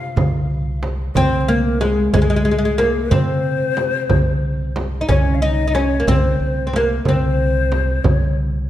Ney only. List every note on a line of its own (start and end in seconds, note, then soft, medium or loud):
0.00 0.79 F5 medium
1.14 1.41 C5 loud
1.14 1.19 C#5 medium
1.41 1.49 C5 medium
1.49 1.55 C5 medium
1.54 1.82 A#4 medium
1.81 2.13 G#4 medium
2.13 3.12 G#4 medium
3.11 4.76 C5 medium
5.08 5.13 D5 medium
5.12 5.36 C#5 medium
5.35 5.43 F5 medium
5.42 5.76 D#5 medium
5.74 6.09 C#5 medium
6.08 6.74 C5 medium
6.73 7.06 A#4 medium
7.06 8.05 C5 medium
8.04 8.37 C#5 medium